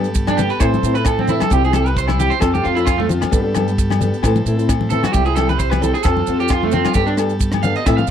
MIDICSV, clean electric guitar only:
0, 0, Header, 1, 2, 480
1, 0, Start_track
1, 0, Tempo, 453172
1, 1610, Time_signature, 4, 2, 24, 8
1, 8586, End_track
2, 0, Start_track
2, 0, Title_t, "Clean electric guitar"
2, 0, Program_c, 0, 27
2, 296, Note_on_c, 0, 62, 78
2, 394, Note_on_c, 0, 67, 87
2, 406, Note_off_c, 0, 62, 0
2, 527, Note_off_c, 0, 67, 0
2, 532, Note_on_c, 0, 71, 85
2, 633, Note_off_c, 0, 71, 0
2, 633, Note_on_c, 0, 72, 93
2, 1002, Note_off_c, 0, 72, 0
2, 1006, Note_on_c, 0, 71, 81
2, 1123, Note_off_c, 0, 71, 0
2, 1123, Note_on_c, 0, 69, 80
2, 1251, Note_off_c, 0, 69, 0
2, 1261, Note_on_c, 0, 60, 60
2, 1368, Note_off_c, 0, 60, 0
2, 1369, Note_on_c, 0, 64, 80
2, 1494, Note_off_c, 0, 64, 0
2, 1500, Note_on_c, 0, 69, 90
2, 1604, Note_off_c, 0, 69, 0
2, 1604, Note_on_c, 0, 67, 83
2, 1731, Note_off_c, 0, 67, 0
2, 1744, Note_on_c, 0, 68, 78
2, 1841, Note_off_c, 0, 68, 0
2, 1845, Note_on_c, 0, 69, 85
2, 1980, Note_off_c, 0, 69, 0
2, 1980, Note_on_c, 0, 71, 82
2, 2087, Note_off_c, 0, 71, 0
2, 2096, Note_on_c, 0, 72, 95
2, 2199, Note_off_c, 0, 72, 0
2, 2204, Note_on_c, 0, 64, 61
2, 2318, Note_off_c, 0, 64, 0
2, 2324, Note_on_c, 0, 67, 91
2, 2437, Note_on_c, 0, 72, 99
2, 2450, Note_off_c, 0, 67, 0
2, 2547, Note_off_c, 0, 72, 0
2, 2551, Note_on_c, 0, 69, 76
2, 2683, Note_off_c, 0, 69, 0
2, 2688, Note_on_c, 0, 67, 79
2, 2791, Note_on_c, 0, 65, 82
2, 2800, Note_off_c, 0, 67, 0
2, 2915, Note_on_c, 0, 64, 73
2, 2924, Note_off_c, 0, 65, 0
2, 3023, Note_on_c, 0, 65, 92
2, 3033, Note_off_c, 0, 64, 0
2, 3155, Note_on_c, 0, 57, 73
2, 3159, Note_off_c, 0, 65, 0
2, 3228, Note_off_c, 0, 57, 0
2, 5192, Note_on_c, 0, 69, 101
2, 5324, Note_off_c, 0, 69, 0
2, 5336, Note_on_c, 0, 66, 87
2, 5427, Note_off_c, 0, 66, 0
2, 5432, Note_on_c, 0, 67, 82
2, 5564, Note_off_c, 0, 67, 0
2, 5569, Note_on_c, 0, 68, 86
2, 5668, Note_off_c, 0, 68, 0
2, 5672, Note_on_c, 0, 69, 93
2, 5804, Note_off_c, 0, 69, 0
2, 5818, Note_on_c, 0, 71, 97
2, 5916, Note_off_c, 0, 71, 0
2, 5920, Note_on_c, 0, 72, 89
2, 6045, Note_off_c, 0, 72, 0
2, 6045, Note_on_c, 0, 71, 85
2, 6163, Note_off_c, 0, 71, 0
2, 6163, Note_on_c, 0, 69, 104
2, 6289, Note_off_c, 0, 69, 0
2, 6293, Note_on_c, 0, 68, 83
2, 6395, Note_off_c, 0, 68, 0
2, 6395, Note_on_c, 0, 69, 107
2, 6770, Note_off_c, 0, 69, 0
2, 6780, Note_on_c, 0, 67, 80
2, 6887, Note_off_c, 0, 67, 0
2, 6895, Note_on_c, 0, 65, 85
2, 7016, Note_off_c, 0, 65, 0
2, 7027, Note_on_c, 0, 57, 58
2, 7129, Note_on_c, 0, 60, 95
2, 7131, Note_off_c, 0, 57, 0
2, 7254, Note_off_c, 0, 60, 0
2, 7260, Note_on_c, 0, 65, 94
2, 7351, Note_off_c, 0, 65, 0
2, 7355, Note_on_c, 0, 67, 92
2, 7482, Note_on_c, 0, 62, 90
2, 7487, Note_off_c, 0, 67, 0
2, 7554, Note_off_c, 0, 62, 0
2, 8080, Note_on_c, 0, 77, 109
2, 8210, Note_off_c, 0, 77, 0
2, 8225, Note_on_c, 0, 75, 95
2, 8327, Note_off_c, 0, 75, 0
2, 8331, Note_on_c, 0, 76, 98
2, 8438, Note_off_c, 0, 76, 0
2, 8442, Note_on_c, 0, 77, 106
2, 8560, Note_off_c, 0, 77, 0
2, 8586, End_track
0, 0, End_of_file